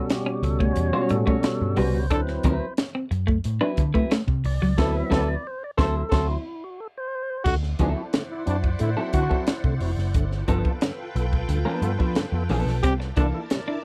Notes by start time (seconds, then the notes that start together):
Already playing: B2 G3 C#4 F#4 A4
0.10 G4, snare, closed hi-hat
0.26 C#4
0.43 C#2 A4, muted clean electric guitar stroke, closed hi-hat
0.60 A3 C#5, kick
0.76 E2, muted clean electric guitar stroke, closed hi-hat
0.93 G3 C#4 F#4 C#5
1.09 A2 G3 A4, closed hi-hat
1.26 G3 A3 C#4 F#4 C#5, kick
1.43 snare, closed hi-hat
1.61 G2
1.77 C2 G3 C#4 F#4 B4 C5, open hi-hat
1.94 C#2
2.10 D2 F#3 C4 D4 E4 A4 B4, kick, closed hi-hat
2.27 muted clean electric guitar stroke, snare
2.43 D2 F#3 C4 E4 B4, kick, closed hi-hat
2.77 snare, closed hi-hat
2.95 C4
3.11 F#2, muted clean electric guitar stroke, closed hi-hat
3.27 A3, kick
3.44 A2, closed hi-hat
3.61 F#3 C4 D4 E4 B4
3.77 D3, muted clean electric guitar stroke, kick, closed hi-hat
3.94 F#3 A3 C4 E4 B4, kick
4.11 A3, snare, closed hi-hat
4.28 C3, kick
4.44 C2 D5, muted clean electric guitar stroke, open hi-hat
4.62 C#2 F#3, snare
4.78 D2 F#3 B3 C4 E4 A4 B4, kick, snare, crash
4.97 E5
5.10 D2 F#3 C4 E4 A4 B4 D5, kick, snare
5.47 C5
5.64 D5
5.77 D2 F#3 C4 E4 A4 C5, kick, snare
5.97 A4
6.09 D2 F#3 C4 E4 A4 C5, kick, snare, crash
6.14 F#4
6.31 E4
6.64 F#4
6.80 A4
6.98 C5
7.44 D2 D3 A3 E4 F#4 C5 D5 F#5, kick, crash
7.63 snare
7.79 D2 F#3 C4 D4 E4 F#4 A4, kick, closed hi-hat
7.97 E4 F#4
8.13 D3 A3, snare, closed hi-hat
8.30 E4
8.46 F#2 C4 D4 E4 F#4, closed hi-hat
8.62 E4 F#4, kick
8.79 A2 D3 A3 E4, closed hi-hat
8.97 F#3 C4 E4 A4
9.13 D3 C4 E4 F#4, kick, closed hi-hat
9.30 F#3 C4 E4 F#4 A4, kick
9.47 E4 F#4, snare, closed hi-hat
9.64 C3 D3 A3, kick
9.80 F1 C4 E4 F#4, open hi-hat
9.97 F#1, snare
10.14 G1 G2 D3 F4 A4 B4 G5, kick, closed hi-hat
10.31 snare
10.48 G1 F3 B3 D4 F4 A4, kick, closed hi-hat
10.65 F4 A4, kick
10.81 G2 D3, snare, closed hi-hat
11.15 B1 B3 F4 A4, closed hi-hat
11.32 F4 A4, kick
11.49 D2 G2 D3, closed hi-hat
11.65 F3 B3 D4 B4
11.82 G2 B3 F4 A4, closed hi-hat
11.99 F3 B3 D4 F4 A4 B4, kick
12.15 G2 D3, snare, closed hi-hat
12.32 F2 B3 F4 A4
12.49 A#1 F3 B3 D4 F4 A4, open hi-hat
12.65 B1, snare
12.83 C2 C3 G3 C4 E4 G4 A#4 D5 A5, kick, closed hi-hat
13.00 muted clean electric guitar stroke, snare
13.16 C2 E3 A#3 D4 E4 A4, kick, closed hi-hat
13.34 E4 A4
13.50 C3 G3, snare, closed hi-hat
13.67 D4 E4